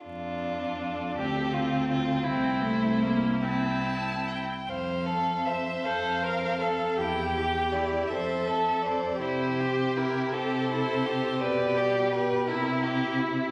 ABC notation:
X:1
M:6/8
L:1/16
Q:3/8=54
K:F
V:1 name="Violin"
A12 | c6 a4 g2 | f4 e2 f6 | g4 d2 e4 d2 |
c4 B2 c6 | d4 =B2 _B2 z4 |]
V:2 name="Viola"
D6 C6 | C2 A,2 B,2 C4- C z | z6 c2 B2 A2 | G6 A6 |
G6 A6 | G6 E6 |]
V:3 name="Violin"
F6 G2 F2 F2 | E6 E4- E z | c2 A2 c2 A2 c2 A2 | E2 G2 E2 c2 A2 c2 |
E2 G2 E2 G2 E2 G2 | =B2 G2 B2 E2 G2 E2 |]
V:4 name="Cello" clef=bass
F,,6 D,,6 | C,,8- C,,3 z | F,,6 F,,6 | E,,6 F,,6 |
C,6 C,6 | =B,,6 C,6 |]